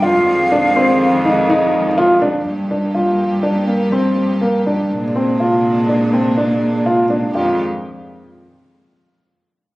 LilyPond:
<<
  \new Staff \with { instrumentName = "Flute" } { \time 5/4 \key f \dorian \tempo 4 = 123 f''1 r4 | r1 r4 | r1 r4 | r1 r4 | }
  \new Staff \with { instrumentName = "Grand piano" } { \time 5/4 \key f \dorian f'4 d'8 c'4 ees'8 ees'4 f'8 d'8 | r8 d'8 f'4 d'8 bes8 c'4 bes8 d'8~ | d'8 c'8 f'4 d'8 c'8 d'4 f'8 d'8 | f'8 r1 r8 | }
  \new Staff \with { instrumentName = "String section" } { \clef bass \time 5/4 \key f \dorian <ees g aes>1~ <ees g aes>4 | <f bes g'>1~ <f bes g'>4 | <c aes d'>1~ <c aes d'>4 | <ees aes g'>8 r1 r8 | }
  \new Staff \with { instrumentName = "Cello" } { \clef bass \time 5/4 \key f \dorian f,1~ f,4 | g,1~ g,4 | bes,1~ bes,4 | f,8 r1 r8 | }
>>